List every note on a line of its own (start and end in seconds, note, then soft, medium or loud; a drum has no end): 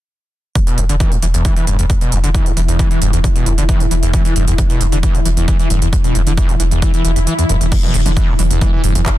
0.55 0.59 E2 medium
0.55 7.71 E3 medium
0.55 7.71 E4 medium
0.55 kick loud
0.55 closed hi-hat medium
0.67 0.79 B2 medium
0.67 closed hi-hat medium
0.78 0.89 E1 medium
0.78 0.84 E2 loud
0.78 closed hi-hat medium
0.89 1.00 E1 medium
0.89 0.95 D3 medium
0.89 closed hi-hat medium
1.00 1.13 E3 loud
1.00 kick loud
1.00 closed hi-hat medium
1.12 1.18 F#2 loud
1.12 closed hi-hat medium
1.22 1.34 E1 loud
1.22 1.26 E3 loud
1.22 closed hi-hat medium
1.34 1.45 E1 medium
1.34 1.43 E2 medium
1.34 closed hi-hat medium
1.45 1.55 E3 medium
1.45 kick loud
1.45 closed hi-hat medium
1.56 1.65 E3 medium
1.56 closed hi-hat medium
1.67 1.78 E1 medium
1.67 1.77 G2 medium
1.67 closed hi-hat medium
1.79 1.90 E1 medium
1.79 1.85 E2 loud
1.79 closed hi-hat medium
1.90 1.94 E2 medium
1.90 kick loud
1.90 closed hi-hat medium
2.01 2.14 B2 medium
2.01 closed hi-hat medium
2.12 2.23 E1 loud
2.12 2.18 E2 loud
2.12 closed hi-hat medium
2.24 2.34 E1 medium
2.24 2.30 D3 medium
2.24 closed hi-hat medium
2.34 2.48 E3 medium
2.34 kick loud
2.34 closed hi-hat medium
2.46 2.52 F#2 loud
2.46 closed hi-hat medium
2.57 2.68 E1 medium
2.57 2.61 E3 loud
2.57 closed hi-hat medium
2.68 2.79 E1 medium
2.68 2.77 E2 medium
2.68 closed hi-hat medium
2.79 2.89 E3 medium
2.79 kick loud
2.79 closed hi-hat medium
2.91 3.00 E3 medium
2.91 closed hi-hat medium
3.02 3.13 E1 loud
3.02 3.11 G2 medium
3.02 closed hi-hat medium
3.13 3.24 E1 medium
3.13 3.19 E2 loud
3.13 closed hi-hat medium
3.24 3.28 E2 loud
3.24 kick loud
3.24 closed hi-hat medium
3.36 3.48 B2 medium
3.36 closed hi-hat medium
3.46 3.57 E1 medium
3.46 3.53 E2 loud
3.46 closed hi-hat medium
3.58 3.69 E1 medium
3.58 3.64 D3 medium
3.58 closed hi-hat medium
3.69 3.82 E3 loud
3.69 kick loud
3.69 closed hi-hat medium
3.80 3.86 F#2 loud
3.80 closed hi-hat medium
3.91 4.02 E1 loud
3.91 3.95 E3 loud
3.91 closed hi-hat medium
4.03 4.13 E1 medium
4.03 4.12 E2 medium
4.03 closed hi-hat medium
4.13 4.23 E3 medium
4.13 kick loud
4.13 closed hi-hat medium
4.25 4.34 E3 medium
4.25 closed hi-hat medium
4.36 4.47 E1 medium
4.36 4.46 G2 medium
4.36 closed hi-hat medium
4.47 4.58 E1 medium
4.47 4.53 E2 loud
4.47 closed hi-hat soft
4.58 4.62 E2 loud
4.58 kick loud
4.58 closed hi-hat medium
4.70 4.82 B2 medium
4.70 closed hi-hat medium
4.81 4.92 E1 loud
4.81 4.87 E2 loud
4.81 closed hi-hat medium
4.92 5.03 E1 medium
4.92 4.98 D3 medium
4.92 closed hi-hat medium
5.03 5.16 E3 loud
5.03 kick loud
5.03 closed hi-hat medium
5.15 5.21 F#2 loud
5.15 closed hi-hat medium
5.25 5.36 E1 loud
5.25 5.29 E3 loud
5.25 closed hi-hat medium
5.37 5.48 E1 medium
5.37 5.46 E2 medium
5.37 closed hi-hat medium
5.48 5.57 E3 medium
5.48 kick loud
5.48 closed hi-hat medium
5.59 5.68 E3 medium
5.59 closed hi-hat soft
5.70 5.81 E1 loud
5.70 5.80 G2 medium
5.70 closed hi-hat medium
5.82 5.92 E1 medium
5.82 5.88 E2 loud
5.82 closed hi-hat medium
5.93 5.97 E2 loud
5.93 kick loud
5.93 closed hi-hat medium
6.04 6.17 B2 medium
6.04 closed hi-hat medium
6.15 6.26 E1 loud
6.15 6.21 E2 medium
6.15 closed hi-hat medium
6.27 6.37 E1 medium
6.27 6.33 D3 medium
6.27 closed hi-hat medium
6.37 6.51 E3 medium
6.37 kick loud
6.37 closed hi-hat medium
6.49 6.55 F#2 loud
6.49 closed hi-hat medium
6.60 6.71 E1 loud
6.60 6.64 E3 loud
6.60 closed hi-hat medium
6.71 6.82 E1 medium
6.71 6.80 E2 medium
6.71 closed hi-hat medium
6.82 6.92 E3 medium
6.82 kick loud
6.82 closed hi-hat medium
6.82 swell medium
6.94 7.03 E3 medium
6.94 closed hi-hat medium
7.05 7.16 E1 loud
7.05 7.11 E3 medium
7.05 closed hi-hat medium
7.16 7.27 E1 medium
7.16 7.20 E2 medium
7.16 closed hi-hat soft
7.27 7.33 E3 medium
7.27 closed hi-hat medium
7.39 7.45 E2 loud
7.39 closed hi-hat soft
7.49 7.60 E1 loud
7.49 7.56 F#2 loud
7.49 closed hi-hat medium
7.61 7.67 E1 medium
7.61 7.72 E1 medium
7.61 closed hi-hat medium
7.72 7.76 E2 loud
7.72 9.18 E3 medium
7.72 9.18 E4 medium
7.72 kick loud
7.72 closed hi-hat medium
7.72 crash loud
7.83 7.96 B2 medium
7.83 mid tom medium
7.94 8.05 E1 loud
7.94 8.01 E2 loud
7.94 open hi-hat loud
8.06 8.16 E1 medium
8.06 8.12 D3 medium
8.06 closed hi-hat medium
8.06 mid tom medium
8.17 8.30 E3 loud
8.17 kick loud
8.17 closed hi-hat medium
8.28 8.34 F#2 loud
8.39 8.50 E1 loud
8.39 8.43 E3 loud
8.39 mid tom medium
8.39 open hi-hat loud
8.51 8.61 E1 medium
8.51 8.59 E2 medium
8.51 closed hi-hat medium
8.61 8.71 E3 medium
8.61 kick loud
8.61 closed hi-hat medium
8.61 mid tom medium
8.73 8.82 E3 medium
8.84 8.95 E1 loud
8.84 8.93 G2 medium
8.84 open hi-hat loud
8.95 9.06 E1 medium
8.95 9.01 E2 loud
8.95 closed hi-hat medium
8.95 mid tom medium
9.06 9.10 E2 loud
9.06 kick loud
9.06 clap loud
9.06 closed hi-hat medium